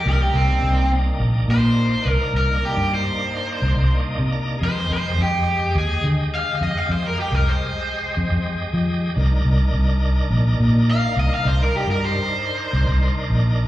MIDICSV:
0, 0, Header, 1, 4, 480
1, 0, Start_track
1, 0, Key_signature, -3, "minor"
1, 0, Tempo, 569260
1, 46, Time_signature, 4, 2, 24, 8
1, 11532, End_track
2, 0, Start_track
2, 0, Title_t, "Overdriven electric guitar"
2, 0, Program_c, 0, 29
2, 74, Note_on_c, 0, 70, 102
2, 178, Note_off_c, 0, 70, 0
2, 189, Note_on_c, 0, 67, 94
2, 294, Note_off_c, 0, 67, 0
2, 306, Note_on_c, 0, 60, 100
2, 763, Note_off_c, 0, 60, 0
2, 1274, Note_on_c, 0, 72, 107
2, 1763, Note_off_c, 0, 72, 0
2, 1763, Note_on_c, 0, 70, 107
2, 1961, Note_off_c, 0, 70, 0
2, 1999, Note_on_c, 0, 70, 97
2, 2218, Note_off_c, 0, 70, 0
2, 2235, Note_on_c, 0, 67, 85
2, 2456, Note_off_c, 0, 67, 0
2, 2482, Note_on_c, 0, 72, 102
2, 3399, Note_off_c, 0, 72, 0
2, 3917, Note_on_c, 0, 72, 109
2, 4138, Note_off_c, 0, 72, 0
2, 4161, Note_on_c, 0, 72, 94
2, 4380, Note_off_c, 0, 72, 0
2, 4402, Note_on_c, 0, 67, 106
2, 4853, Note_off_c, 0, 67, 0
2, 4880, Note_on_c, 0, 68, 108
2, 5099, Note_off_c, 0, 68, 0
2, 5352, Note_on_c, 0, 77, 108
2, 5576, Note_off_c, 0, 77, 0
2, 5593, Note_on_c, 0, 75, 95
2, 5712, Note_off_c, 0, 75, 0
2, 5712, Note_on_c, 0, 77, 76
2, 5819, Note_off_c, 0, 77, 0
2, 5836, Note_on_c, 0, 72, 96
2, 5942, Note_off_c, 0, 72, 0
2, 5962, Note_on_c, 0, 70, 91
2, 6064, Note_off_c, 0, 70, 0
2, 6074, Note_on_c, 0, 67, 83
2, 6196, Note_off_c, 0, 67, 0
2, 6196, Note_on_c, 0, 70, 89
2, 6313, Note_off_c, 0, 70, 0
2, 6313, Note_on_c, 0, 72, 104
2, 7234, Note_off_c, 0, 72, 0
2, 9196, Note_on_c, 0, 77, 109
2, 9417, Note_off_c, 0, 77, 0
2, 9443, Note_on_c, 0, 75, 85
2, 9545, Note_off_c, 0, 75, 0
2, 9565, Note_on_c, 0, 77, 87
2, 9664, Note_off_c, 0, 77, 0
2, 9677, Note_on_c, 0, 72, 109
2, 9801, Note_off_c, 0, 72, 0
2, 9801, Note_on_c, 0, 70, 92
2, 9915, Note_off_c, 0, 70, 0
2, 9915, Note_on_c, 0, 67, 92
2, 10021, Note_off_c, 0, 67, 0
2, 10040, Note_on_c, 0, 70, 92
2, 10142, Note_off_c, 0, 70, 0
2, 10162, Note_on_c, 0, 72, 119
2, 11077, Note_off_c, 0, 72, 0
2, 11532, End_track
3, 0, Start_track
3, 0, Title_t, "Tonewheel organ"
3, 0, Program_c, 1, 16
3, 34, Note_on_c, 1, 58, 64
3, 46, Note_on_c, 1, 62, 61
3, 63, Note_on_c, 1, 63, 68
3, 3404, Note_on_c, 1, 75, 65
3, 3631, Note_off_c, 1, 75, 0
3, 3648, Note_on_c, 1, 82, 70
3, 3852, Note_off_c, 1, 58, 0
3, 3859, Note_off_c, 1, 62, 0
3, 3867, Note_off_c, 1, 63, 0
3, 3872, Note_on_c, 1, 56, 58
3, 3873, Note_off_c, 1, 82, 0
3, 3885, Note_on_c, 1, 75, 54
3, 3901, Note_on_c, 1, 67, 71
3, 7688, Note_off_c, 1, 56, 0
3, 7695, Note_off_c, 1, 75, 0
3, 7703, Note_off_c, 1, 67, 0
3, 7712, Note_on_c, 1, 62, 77
3, 7724, Note_on_c, 1, 63, 62
3, 7740, Note_on_c, 1, 70, 78
3, 11525, Note_off_c, 1, 62, 0
3, 11531, Note_off_c, 1, 63, 0
3, 11532, Note_off_c, 1, 70, 0
3, 11532, End_track
4, 0, Start_track
4, 0, Title_t, "Fingered electric bass"
4, 0, Program_c, 2, 33
4, 47, Note_on_c, 2, 36, 101
4, 241, Note_off_c, 2, 36, 0
4, 287, Note_on_c, 2, 36, 101
4, 482, Note_off_c, 2, 36, 0
4, 530, Note_on_c, 2, 36, 91
4, 918, Note_off_c, 2, 36, 0
4, 1010, Note_on_c, 2, 34, 109
4, 1204, Note_off_c, 2, 34, 0
4, 1249, Note_on_c, 2, 46, 103
4, 1638, Note_off_c, 2, 46, 0
4, 1733, Note_on_c, 2, 36, 72
4, 1829, Note_off_c, 2, 36, 0
4, 1970, Note_on_c, 2, 36, 87
4, 2164, Note_off_c, 2, 36, 0
4, 2335, Note_on_c, 2, 43, 84
4, 2528, Note_off_c, 2, 43, 0
4, 3053, Note_on_c, 2, 36, 86
4, 3149, Note_off_c, 2, 36, 0
4, 3172, Note_on_c, 2, 36, 84
4, 3366, Note_off_c, 2, 36, 0
4, 3532, Note_on_c, 2, 48, 77
4, 3823, Note_off_c, 2, 48, 0
4, 3892, Note_on_c, 2, 41, 102
4, 4086, Note_off_c, 2, 41, 0
4, 4132, Note_on_c, 2, 41, 89
4, 4327, Note_off_c, 2, 41, 0
4, 4372, Note_on_c, 2, 41, 102
4, 4761, Note_off_c, 2, 41, 0
4, 4850, Note_on_c, 2, 39, 102
4, 5045, Note_off_c, 2, 39, 0
4, 5092, Note_on_c, 2, 50, 90
4, 5481, Note_off_c, 2, 50, 0
4, 5572, Note_on_c, 2, 41, 73
4, 5670, Note_off_c, 2, 41, 0
4, 5810, Note_on_c, 2, 41, 93
4, 6005, Note_off_c, 2, 41, 0
4, 6168, Note_on_c, 2, 36, 76
4, 6365, Note_off_c, 2, 36, 0
4, 6890, Note_on_c, 2, 41, 89
4, 6987, Note_off_c, 2, 41, 0
4, 7009, Note_on_c, 2, 41, 93
4, 7204, Note_off_c, 2, 41, 0
4, 7366, Note_on_c, 2, 53, 86
4, 7659, Note_off_c, 2, 53, 0
4, 7728, Note_on_c, 2, 36, 102
4, 7924, Note_off_c, 2, 36, 0
4, 7970, Note_on_c, 2, 36, 94
4, 8165, Note_off_c, 2, 36, 0
4, 8207, Note_on_c, 2, 36, 102
4, 8597, Note_off_c, 2, 36, 0
4, 8688, Note_on_c, 2, 34, 108
4, 8884, Note_off_c, 2, 34, 0
4, 8934, Note_on_c, 2, 46, 95
4, 9321, Note_off_c, 2, 46, 0
4, 9415, Note_on_c, 2, 36, 79
4, 9512, Note_off_c, 2, 36, 0
4, 9656, Note_on_c, 2, 36, 90
4, 9848, Note_off_c, 2, 36, 0
4, 10014, Note_on_c, 2, 43, 83
4, 10207, Note_off_c, 2, 43, 0
4, 10736, Note_on_c, 2, 36, 94
4, 10830, Note_off_c, 2, 36, 0
4, 10857, Note_on_c, 2, 36, 86
4, 11048, Note_off_c, 2, 36, 0
4, 11214, Note_on_c, 2, 34, 81
4, 11503, Note_off_c, 2, 34, 0
4, 11532, End_track
0, 0, End_of_file